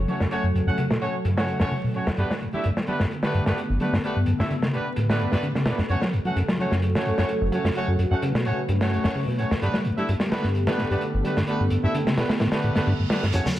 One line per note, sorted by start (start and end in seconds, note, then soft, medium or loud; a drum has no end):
0.00 2.14 C#3 medium
0.00 2.14 F#3 medium
0.00 5.86 A3 medium
0.00 2.14 F#4 medium
0.00 4.00 A4 medium
0.08 0.15 F#3 medium
0.08 0.23 A3 medium
0.08 0.23 C#4 medium
0.08 0.23 F#4 medium
0.08 0.23 C#5 medium
0.08 closed hi-hat medium
0.20 0.26 F#2 medium
0.20 snare soft
0.31 0.46 A3 medium
0.31 0.46 C#4 medium
0.31 0.46 F#4 medium
0.31 0.46 C#5 loud
0.31 closed hi-hat medium
0.43 0.53 F#2 medium
0.55 0.62 F#2 medium
0.55 closed hi-hat medium
0.66 0.70 F#2 medium
0.66 0.80 A3 medium
0.66 0.80 C#4 medium
0.66 0.80 F#4 medium
0.66 0.80 F#5 medium
0.78 0.88 C#3 medium
0.78 closed hi-hat medium
0.90 1.03 B2 medium
0.90 snare soft
1.01 1.08 A2 medium
1.01 1.16 A3 medium
1.01 1.16 C#4 medium
1.01 1.16 F#4 medium
1.01 1.16 C#5 medium
1.01 closed hi-hat medium
1.25 1.49 G2 medium
1.25 closed hi-hat medium
1.37 1.56 A3 medium
1.37 1.56 C#4 medium
1.37 1.57 F#4 medium
1.37 1.56 C#5 medium
1.37 snare medium
1.48 1.55 F#2 medium
1.48 closed hi-hat medium
1.59 1.64 F#2 medium
1.59 1.73 A3 medium
1.59 1.73 C#4 medium
1.59 1.73 F#4 medium
1.59 1.73 C#5 loud
1.59 snare soft
1.71 1.81 C#3 medium
1.71 open hi-hat medium
1.84 1.96 B2 medium
1.94 2.01 A2 medium
1.94 2.09 A3 medium
1.94 2.09 C#4 medium
1.94 2.09 F#4 medium
1.94 2.09 C#5 medium
1.94 closed hi-hat medium
2.07 2.10 E2 medium
2.07 snare medium
2.17 2.24 G2 medium
2.17 5.86 D3 medium
2.17 2.32 A3 medium
2.17 2.32 B3 medium
2.17 5.86 B3 medium
2.17 2.32 D4 medium
2.17 2.32 G4 medium
2.17 5.86 G4 medium
2.17 2.32 B4 medium
2.17 closed hi-hat medium
2.30 2.43 G3 medium
2.30 snare soft
2.41 2.48 G2 medium
2.41 closed hi-hat medium
2.53 2.59 G3 medium
2.53 2.67 A3 medium
2.53 2.66 D4 medium
2.53 2.66 E4 medium
2.53 2.67 G4 medium
2.53 2.66 E5 medium
2.53 closed hi-hat soft
2.64 2.71 G2 medium
2.64 closed hi-hat medium
2.77 2.85 G3 medium
2.77 snare soft
2.87 2.94 G3 medium
2.87 3.02 A3 medium
2.87 3.02 B3 medium
2.87 3.02 D4 medium
2.87 3.02 G4 medium
2.87 3.02 B4 medium
2.87 closed hi-hat medium
3.00 3.06 G2 medium
3.00 snare soft
3.11 closed hi-hat medium
3.23 3.43 A3 medium
3.23 3.43 B3 medium
3.23 3.43 D4 medium
3.23 3.43 G4 medium
3.23 3.43 B4 medium
3.23 snare soft
3.34 3.41 G2 medium
3.34 closed hi-hat medium
3.46 3.52 G2 medium
3.46 3.59 A3 medium
3.46 3.59 B3 medium
3.46 3.59 D4 medium
3.46 3.59 G4 medium
3.46 3.59 B4 loud
3.46 snare soft
3.58 closed hi-hat medium
3.69 3.78 G1 loud
3.80 3.87 G3 medium
3.80 3.95 A3 medium
3.80 3.95 B3 medium
3.80 3.95 D4 medium
3.80 3.95 G4 medium
3.80 3.95 B4 medium
3.80 closed hi-hat medium
3.92 3.99 G2 medium
3.92 snare soft
4.04 4.18 A3 medium
4.04 4.18 B3 medium
4.04 4.18 D4 medium
4.04 4.18 G4 medium
4.04 5.88 B4 medium
4.04 4.18 B4 loud
4.04 closed hi-hat medium
4.16 4.25 G2 medium
4.26 4.34 G2 medium
4.26 closed hi-hat medium
4.39 4.43 G2 loud
4.39 4.53 A3 medium
4.39 4.52 D4 medium
4.39 4.53 E4 medium
4.39 4.52 G4 medium
4.39 4.53 E5 medium
4.39 snare soft
4.50 4.60 D3 medium
4.50 closed hi-hat medium
4.62 4.75 C#3 medium
4.62 snare soft
4.73 4.80 B2 medium
4.73 4.88 A3 medium
4.73 4.88 B3 medium
4.73 4.88 D4 medium
4.73 4.88 G4 medium
4.73 4.88 B4 medium
4.73 closed hi-hat medium
4.96 5.22 A2 medium
4.96 closed hi-hat medium
5.09 5.28 A3 medium
5.09 5.29 B3 medium
5.09 5.29 D4 medium
5.09 5.29 G4 medium
5.09 5.29 B4 medium
5.09 snare medium
5.19 5.27 G2 medium
5.19 closed hi-hat medium
5.32 5.36 G2 medium
5.32 5.46 A3 medium
5.32 5.46 B3 medium
5.32 5.46 D4 medium
5.32 5.46 G4 medium
5.32 5.46 B4 loud
5.32 snare soft
5.42 5.53 D3 medium
5.42 closed hi-hat medium
5.55 5.67 C#3 medium
5.55 snare soft
5.66 5.73 B2 medium
5.66 5.81 A3 medium
5.66 5.81 B3 medium
5.66 5.81 D4 medium
5.66 5.81 G4 medium
5.66 5.81 B4 medium
5.66 snare medium
5.66 closed hi-hat medium
5.78 5.82 F#2 medium
5.78 snare soft
5.89 5.96 F#2 medium
5.89 9.58 C#3 medium
5.89 9.58 F#3 medium
5.89 13.30 A3 medium
5.89 6.04 A3 medium
5.89 6.04 C#4 medium
5.89 9.58 F#4 medium
5.89 6.04 F#4 medium
5.89 7.74 A4 medium
5.89 6.04 C#5 medium
5.89 closed hi-hat medium
6.02 6.14 F#3 medium
6.02 snare soft
6.13 6.20 F#2 medium
6.13 closed hi-hat medium
6.25 6.31 F#3 medium
6.25 6.39 A3 medium
6.25 6.39 C#4 medium
6.25 6.39 F#4 medium
6.25 6.39 F#5 medium
6.25 closed hi-hat soft
6.36 6.43 F#2 medium
6.36 closed hi-hat medium
6.48 6.57 F#3 medium
6.48 snare soft
6.59 6.66 F#3 medium
6.59 6.74 A3 medium
6.59 6.74 C#4 medium
6.59 6.74 F#4 medium
6.59 6.74 C#5 medium
6.59 closed hi-hat medium
6.71 6.96 F#2 medium
6.71 snare soft
6.82 closed hi-hat medium
6.95 7.07 F#3 medium
6.95 7.15 A3 medium
6.95 7.15 C#4 medium
6.95 7.15 F#4 medium
6.95 7.15 C#5 medium
6.95 snare soft
7.05 7.12 F#2 medium
7.05 closed hi-hat medium
7.18 7.24 F#2 medium
7.18 7.32 A3 medium
7.18 7.32 C#4 medium
7.18 7.32 F#4 medium
7.18 7.31 C#5 loud
7.18 snare soft
7.28 closed hi-hat medium
7.41 7.50 F#1 loud
7.52 7.59 F#3 medium
7.52 7.67 A3 medium
7.52 7.67 C#4 medium
7.52 7.67 F#4 medium
7.52 7.67 C#5 medium
7.52 closed hi-hat medium
7.64 7.70 F#2 medium
7.64 snare soft
7.75 7.90 A3 medium
7.75 7.90 C#4 medium
7.75 7.90 F#4 medium
7.75 9.60 B4 medium
7.75 7.90 C#5 loud
7.75 closed hi-hat medium
7.87 7.97 F#2 medium
7.99 8.06 F#2 medium
7.99 closed hi-hat medium
8.11 8.15 F#2 medium
8.11 8.25 A3 medium
8.11 8.25 C#4 medium
8.11 8.25 F#4 medium
8.11 8.25 F#5 medium
8.22 8.32 C#3 medium
8.22 closed hi-hat medium
8.34 8.47 B2 medium
8.34 snare medium
8.45 8.52 A2 medium
8.45 8.60 A3 medium
8.45 8.60 C#4 medium
8.45 8.60 F#4 medium
8.45 8.60 C#5 medium
8.45 closed hi-hat medium
8.68 8.93 G2 medium
8.68 closed hi-hat medium
8.81 9.01 A3 medium
8.81 9.01 C#4 medium
8.81 9.01 F#4 medium
8.81 9.01 C#5 medium
8.81 snare soft
8.92 8.99 F#2 medium
8.92 closed hi-hat medium
9.04 9.08 F#2 medium
9.04 9.18 A3 medium
9.04 9.18 C#4 medium
9.04 9.18 F#4 medium
9.04 9.18 C#5 loud
9.04 snare soft
9.15 9.25 C#3 medium
9.15 open hi-hat medium
9.27 9.40 B2 medium
9.38 9.45 A2 medium
9.38 9.53 A3 medium
9.38 9.53 C#4 medium
9.38 9.53 F#4 medium
9.38 9.53 C#5 medium
9.38 closed hi-hat medium
9.51 9.54 E2 medium
9.51 snare soft
9.61 9.69 G2 medium
9.61 13.30 D3 medium
9.61 9.76 A3 medium
9.61 13.30 B3 medium
9.61 9.76 B3 medium
9.61 9.76 D4 medium
9.61 13.30 G4 medium
9.61 9.76 G4 medium
9.61 13.30 A4 medium
9.61 9.76 B4 loud
9.61 closed hi-hat medium
9.74 9.86 G3 medium
9.74 snare soft
9.84 9.92 G2 medium
9.84 closed hi-hat medium
9.97 10.03 G3 medium
9.97 10.11 A3 medium
9.97 10.11 D4 medium
9.97 10.11 E4 medium
9.97 10.11 G4 medium
9.97 10.11 E5 medium
9.97 closed hi-hat soft
10.08 10.15 G2 medium
10.08 closed hi-hat medium
10.20 10.30 G3 medium
10.20 snare soft
10.31 10.38 G3 medium
10.31 10.46 A3 medium
10.31 10.46 B3 medium
10.31 10.46 D4 medium
10.31 10.46 G4 medium
10.31 10.46 B4 medium
10.31 snare medium
10.31 closed hi-hat medium
10.43 10.69 G2 medium
10.43 snare soft
10.55 closed hi-hat medium
10.67 10.80 G3 medium
10.67 10.87 A3 medium
10.67 10.87 B3 medium
10.67 10.87 D4 medium
10.67 10.87 G4 medium
10.67 10.87 B4 medium
10.67 snare medium
10.67 closed hi-hat medium
10.78 10.85 G2 medium
10.78 snare soft
10.90 10.96 G2 medium
10.90 11.04 A3 medium
10.90 11.04 B3 medium
10.90 11.04 D4 medium
10.90 11.04 G4 medium
10.90 11.04 B4 loud
10.90 closed hi-hat soft
11.01 closed hi-hat medium
11.14 11.23 G1 medium
11.24 11.31 G3 medium
11.24 11.39 A3 medium
11.24 11.39 B3 medium
11.24 11.39 D4 medium
11.24 11.39 G4 medium
11.24 11.39 B4 medium
11.24 closed hi-hat medium
11.37 11.43 G2 medium
11.37 snare soft
11.47 11.62 A3 medium
11.47 11.62 B3 medium
11.47 11.62 D4 medium
11.47 11.62 G4 medium
11.47 11.62 B4 medium
11.47 closed hi-hat medium
11.60 11.69 G2 medium
11.70 11.78 G2 medium
11.70 closed hi-hat medium
11.83 11.87 G2 loud
11.83 11.97 A3 medium
11.83 11.96 D4 medium
11.83 11.97 E4 medium
11.83 11.97 G4 medium
11.83 11.97 E5 medium
11.94 12.04 D3 medium
11.94 closed hi-hat medium
12.06 12.19 C#3 medium
12.06 snare soft
12.17 12.24 B2 medium
12.17 12.32 A3 medium
12.17 12.32 B3 medium
12.17 12.32 D4 medium
12.17 12.32 G4 medium
12.17 12.32 B4 medium
12.17 snare medium
12.17 closed hi-hat medium
12.29 snare loud
12.29 closed hi-hat medium
12.39 12.47 A2 medium
12.39 snare loud
12.39 closed hi-hat medium
12.39 reverse cymbal medium
12.52 12.73 A3 medium
12.52 12.73 B3 medium
12.52 12.73 D4 medium
12.52 12.73 G4 medium
12.52 12.73 B4 medium
12.52 snare medium
12.52 closed hi-hat medium
12.62 12.71 A2 medium
12.62 closed hi-hat medium
12.75 12.80 G2 medium
12.75 12.89 A3 medium
12.75 12.90 B3 medium
12.75 12.89 D4 medium
12.75 12.89 G4 medium
12.75 12.90 B4 loud
12.75 snare soft
12.87 12.94 G2 loud
12.99 13.06 G2 medium
13.10 13.21 G3 medium
13.10 13.25 A3 medium
13.10 13.25 B3 medium
13.10 13.25 D4 medium
13.10 13.25 G4 medium
13.10 13.25 B4 medium
13.10 snare medium
13.10 closed hi-hat medium
13.23 13.32 G2 medium
13.23 snare soft
13.33 13.59 F#1 medium
13.33 13.41 F#2 medium
13.33 13.59 C#3 medium
13.33 13.59 F#3 medium
13.33 13.59 A3 medium
13.33 13.48 A3 medium
13.33 13.48 C#4 medium
13.33 13.48 F#4 medium
13.33 13.59 F#4 medium
13.33 13.59 A4 medium
13.33 13.48 C#5 loud
13.33 kick loud
13.33 closed hi-hat medium
13.33 riser medium
13.46 13.59 F#3 medium
13.46 snare soft
13.46 high conga medium
13.56 closed hi-hat medium